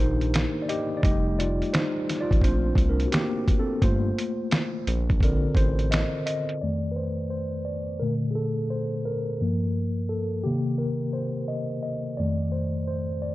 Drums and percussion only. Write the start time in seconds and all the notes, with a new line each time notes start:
0.21 closed hi-hat
0.34 snare, closed hi-hat
0.69 closed hi-hat
1.03 kick, closed hi-hat
1.40 closed hi-hat
1.62 closed hi-hat
1.74 snare, closed hi-hat
2.09 snare, closed hi-hat
2.31 kick, closed hi-hat
2.41 kick, closed hi-hat
2.75 kick, closed hi-hat
3.00 closed hi-hat
3.12 snare, closed hi-hat
3.48 kick, closed hi-hat
3.82 kick, closed hi-hat
4.18 closed hi-hat
4.51 snare, closed hi-hat
4.87 closed hi-hat
5.10 kick, closed hi-hat
5.20 kick, closed hi-hat
5.55 kick, closed hi-hat
5.79 closed hi-hat
5.92 snare, closed hi-hat
6.27 closed hi-hat
6.49 closed hi-hat